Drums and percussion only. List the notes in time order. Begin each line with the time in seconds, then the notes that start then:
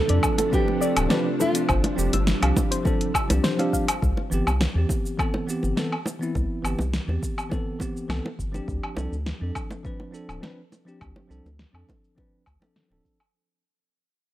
0.09 closed hi-hat
0.23 kick, cabasa, low woodblock
0.38 closed hi-hat, high bongo, cabasa
0.53 kick, cabasa
0.68 high bongo
0.82 cabasa
0.97 closed hi-hat, cabasa, low woodblock
1.10 snare, high bongo, cabasa
1.40 high bongo, cabasa
1.55 closed hi-hat, cabasa
1.69 kick, cabasa, low woodblock
1.84 closed hi-hat, high bongo
1.99 cabasa
2.13 closed hi-hat, high bongo, cabasa
2.27 snare, cabasa
2.43 closed hi-hat, low woodblock
2.56 kick, high bongo, cabasa
2.72 closed hi-hat, cabasa
2.85 kick, high bongo, cabasa
3.01 closed hi-hat
3.15 kick, cabasa, low woodblock
3.30 closed hi-hat, high bongo, cabasa
3.44 snare, cabasa
3.59 closed hi-hat, high bongo
3.73 kick, cabasa
3.88 closed hi-hat, cabasa, low woodblock
4.02 kick, cabasa
4.17 high bongo
4.32 cabasa
4.47 cabasa, low woodblock
4.61 snare, high bongo, cabasa
4.89 kick, high bongo, cabasa
5.06 cabasa
5.19 kick, cabasa, low woodblock
5.34 high bongo
5.49 cabasa
5.63 high bongo, cabasa
5.77 snare, cabasa
5.92 low woodblock
6.06 high bongo, cabasa
6.23 cabasa
6.35 kick, high bongo, cabasa
6.65 cabasa, low woodblock
6.79 high bongo, cabasa
6.94 snare, cabasa
7.09 high bongo
7.23 kick, cabasa
7.38 cabasa, low woodblock
7.51 kick, high bongo, cabasa
7.80 kick, high bongo, cabasa
7.97 cabasa
8.10 snare, cabasa, low woodblock
8.26 high bongo
8.39 kick, cabasa
8.54 high bongo, cabasa
8.68 kick, cabasa
8.83 low woodblock
8.97 high bongo, cabasa
9.13 cabasa
9.26 snare, high bongo, cabasa
9.55 kick, cabasa, low woodblock
9.71 high bongo, cabasa
9.85 kick, cabasa
10.00 high bongo
10.14 cabasa
10.29 cabasa, low woodblock
10.43 snare, high bongo, cabasa
10.72 high bongo, cabasa
10.88 cabasa
11.01 kick, cabasa, low woodblock
11.16 high bongo
11.31 cabasa
11.46 high bongo, cabasa
11.59 snare, cabasa
11.75 low woodblock
11.89 kick, high bongo, cabasa
12.04 cabasa
12.18 kick, high bongo, cabasa
12.46 kick, cabasa, low woodblock
12.62 high bongo, cabasa
12.76 snare, cabasa
12.92 high bongo
13.05 kick, cabasa
13.20 cabasa, low woodblock